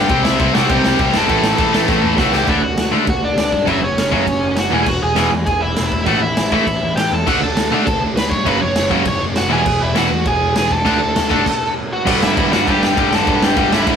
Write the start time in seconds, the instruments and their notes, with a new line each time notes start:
Already playing: distorted electric guitar G3 B3, lead electric guitar G4 G5
0.00 distorted electric guitar G2 D3
0.09 picked electric bass C2, overdriven electric guitar C3 G3 C4, kick, crash
0.13 distorted electric guitar E4
0.24 picked electric bass C2, lead electric guitar E4 E5, snare
0.39 picked electric bass C2, overdriven electric guitar C3 G3 C4, distorted electric guitar E4, kick, crash
0.54 picked electric bass C2, overdriven electric guitar C3 G3 C4, distorted electric guitar E4, lead electric guitar F#4 F#5, snare
0.69 picked electric bass C2, overdriven electric guitar C3 G3 C4, distorted electric guitar E4, lead electric guitar G4 G5, kick, crash
0.84 snare
0.99 picked electric bass C2, overdriven electric guitar C3 G3 C4, distorted electric guitar E4, lead electric guitar G4 G5, kick, crash
1.14 picked electric bass G1, overdriven electric guitar C3 G3 C4, distorted electric guitar E4, lead electric guitar A4 A5, snare
1.28 picked electric bass A1, overdriven electric guitar A2 E3 A3, kick, crash
1.32 distorted electric guitar C#4 E4
1.44 snare
1.58 picked electric bass A1, overdriven electric guitar A2 E3 A3, distorted electric guitar C#4 E4, kick, crash
1.73 picked electric bass A1, overdriven electric guitar A2 E3 A3, distorted electric guitar C#4 E4, snare
1.88 picked electric bass A1, overdriven electric guitar A2 E3 A3, distorted electric guitar C#4 E4, kick, snare
2.03 picked electric bass E2
2.18 picked electric bass C#2, overdriven electric guitar A2 E3 A3, distorted electric guitar C#4 E4, lead electric guitar F#4 F#5, kick, snare
2.32 overdriven electric guitar A2 E3 A3, distorted electric guitar C#4 E4, lead electric guitar G4 G5, snare
2.47 picked electric bass D2, overdriven electric guitar D3 A3 D4, lead electric guitar E4 E5, kick, ride
2.61 picked electric bass D2, lead electric guitar F#4 F#5
2.77 picked electric bass D2, snare, ride
2.91 picked electric bass D3, overdriven electric guitar D3 A3 D4
3.07 picked electric bass D2, lead electric guitar F#4 F#5, kick, ride
3.21 picked electric bass D2, lead electric guitar D4 D5
3.37 picked electric bass D2, snare, ride
3.52 picked electric bass G2, kick
3.66 picked electric bass F#1, overdriven electric guitar F#2 C#3 F#3, lead electric guitar E4 E5, kick, ride
3.82 picked electric bass F#1, lead electric guitar C#4 C#5
3.97 picked electric bass F#1, snare, ride
4.12 overdriven electric guitar F#2 C#3 F#3, picked electric bass F#2, lead electric guitar C#4 C#5, kick
4.26 picked electric bass F#1, kick, ride
4.42 picked electric bass F#1
4.56 picked electric bass F#1, lead electric guitar F#4 F#5, snare, ride
4.71 picked electric bass E1, overdriven electric guitar E2 B2 E3, lead electric guitar G#4 G#5
4.86 picked electric bass E1, lead electric guitar F#4 F#5, kick, crash
5.01 picked electric bass E1, lead electric guitar G#4 G#5
5.16 picked electric bass E1, overdriven electric guitar E2 B2 E3, snare, ride
5.31 picked electric bass E2
5.46 picked electric bass E1, lead electric guitar G#4 G#5, kick, ride
5.61 picked electric bass E1, lead electric guitar E4 E5
5.76 picked electric bass E1, snare, ride
5.92 picked electric bass E1, kick
6.06 picked electric bass A1, overdriven electric guitar A2 E3 A3, lead electric guitar F#4 F#5, kick, ride
6.21 picked electric bass A1, lead electric guitar E4 E5
6.37 picked electric bass A1, snare, ride
6.51 picked electric bass A2, overdriven electric guitar A2 E3 A3, lead electric guitar E4 E5, kick
6.67 picked electric bass A1, kick, ride
6.82 picked electric bass A1
6.96 picked electric bass A1, lead electric guitar G4 G5, snare, ride
7.11 picked electric bass E2, lead electric guitar A4 A5
7.27 picked electric bass D2, overdriven electric guitar D3 A3 D4, distorted electric guitar F#3, lead electric guitar F#4 F#5, kick, crash
7.41 picked electric bass D2, lead electric guitar A4 A5
7.56 picked electric bass D2, snare, ride
7.72 picked electric bass D3, overdriven electric guitar D3 A3 D4
7.86 picked electric bass D2, lead electric guitar A4 A5, kick, ride
8.01 picked electric bass D2
8.16 picked electric bass D2, lead electric guitar B4 B5, snare, ride
8.29 picked electric bass G2, distorted electric guitar A3 D4, lead electric guitar C#5 C#6, kick
8.34 distorted electric guitar D3 F#3
8.46 picked electric bass F#1, overdriven electric guitar F#2 C#3 F#3, distorted electric guitar A3 C#4, lead electric guitar B4 B5, kick, ride
8.61 picked electric bass F#1, lead electric guitar C#5 C#6
8.76 picked electric bass F#1, snare, ride
8.90 overdriven electric guitar F#2 C#3 F#3, picked electric bass F#2, kick
9.05 picked electric bass F#1, lead electric guitar C#5 C#6, kick, ride
9.22 picked electric bass F#1
9.36 picked electric bass F#1, lead electric guitar F#4 F#5, snare, ride
9.49 picked electric bass E1, overdriven electric guitar E2 B2 E3, distorted electric guitar G#3 B3, lead electric guitar G#4 G#5
9.54 distorted electric guitar E4
9.65 picked electric bass E1, kick, crash
9.81 picked electric bass E1, lead electric guitar E4 E5
9.95 picked electric bass E1, overdriven electric guitar E2 B2 E3, lead electric guitar F#4 F#5, snare, ride
10.11 picked electric bass E2
10.25 picked electric bass E1, lead electric guitar G#4 G#5, kick, ride
10.41 picked electric bass E1
10.56 picked electric bass E1, distorted electric guitar E3 G#3 B3 E4, lead electric guitar G#4 G#5, snare, ride
10.71 picked electric bass E1, lead electric guitar A4 A5, kick
10.85 picked electric bass D2, overdriven electric guitar D3 A3 D4, distorted electric guitar F#4, kick, ride
11.01 picked electric bass D2
11.16 picked electric bass D2, snare, ride
11.30 picked electric bass F#1, overdriven electric guitar D3 A3 D4, kick
11.46 kick, crash
11.93 lead electric guitar F#4 F#5
12.06 picked electric bass G1, overdriven electric guitar G2 D3 G3, kick, crash
12.22 picked electric bass G1, lead electric guitar E4 E5, snare
12.37 picked electric bass G1, overdriven electric guitar G2 D3 G3, kick, crash
12.51 picked electric bass G1, overdriven electric guitar G2 D3 G3, lead electric guitar F#4 F#5, snare
12.67 picked electric bass G1, overdriven electric guitar G2 D3 G3, lead electric guitar G4 G5, kick, crash
12.82 lead electric guitar G4 G5, snare
12.97 picked electric bass G1, overdriven electric guitar G2 D3 G3, kick, crash
13.12 picked electric bass G1, overdriven electric guitar G2 D3 G3, lead electric guitar A4 A5, snare
13.27 picked electric bass G1, overdriven electric guitar G2 D3 G3, kick, crash
13.43 lead electric guitar G4 G5, snare
13.56 picked electric bass G1, overdriven electric guitar G2 D3 G3, lead electric guitar G4 G5, kick, crash
13.71 picked electric bass G1, overdriven electric guitar G2 D3 G3, lead electric guitar E4 E5, snare
13.87 picked electric bass G1, overdriven electric guitar G2 D3 G3, kick, crash